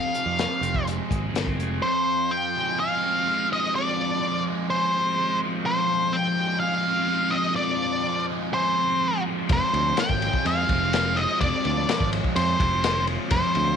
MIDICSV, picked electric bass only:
0, 0, Header, 1, 2, 480
1, 0, Start_track
1, 0, Tempo, 479233
1, 1827, Time_signature, 4, 2, 24, 8
1, 13786, End_track
2, 0, Start_track
2, 0, Title_t, "Picked electric bass"
2, 0, Program_c, 0, 34
2, 260, Note_on_c, 0, 41, 76
2, 450, Note_off_c, 0, 41, 0
2, 613, Note_on_c, 0, 29, 82
2, 995, Note_off_c, 0, 29, 0
2, 1108, Note_on_c, 0, 32, 76
2, 1324, Note_off_c, 0, 32, 0
2, 1328, Note_on_c, 0, 31, 77
2, 1553, Note_off_c, 0, 31, 0
2, 1573, Note_on_c, 0, 29, 68
2, 1795, Note_off_c, 0, 29, 0
2, 9511, Note_on_c, 0, 29, 106
2, 9604, Note_off_c, 0, 29, 0
2, 9750, Note_on_c, 0, 38, 87
2, 9938, Note_off_c, 0, 38, 0
2, 10110, Note_on_c, 0, 32, 94
2, 10298, Note_off_c, 0, 32, 0
2, 10469, Note_on_c, 0, 41, 89
2, 10657, Note_off_c, 0, 41, 0
2, 10708, Note_on_c, 0, 29, 90
2, 11273, Note_off_c, 0, 29, 0
2, 11428, Note_on_c, 0, 29, 93
2, 11522, Note_off_c, 0, 29, 0
2, 11672, Note_on_c, 0, 38, 81
2, 11858, Note_off_c, 0, 38, 0
2, 12022, Note_on_c, 0, 32, 100
2, 12212, Note_off_c, 0, 32, 0
2, 12379, Note_on_c, 0, 41, 87
2, 12570, Note_off_c, 0, 41, 0
2, 12618, Note_on_c, 0, 29, 93
2, 13186, Note_off_c, 0, 29, 0
2, 13330, Note_on_c, 0, 29, 102
2, 13430, Note_off_c, 0, 29, 0
2, 13579, Note_on_c, 0, 38, 86
2, 13770, Note_off_c, 0, 38, 0
2, 13786, End_track
0, 0, End_of_file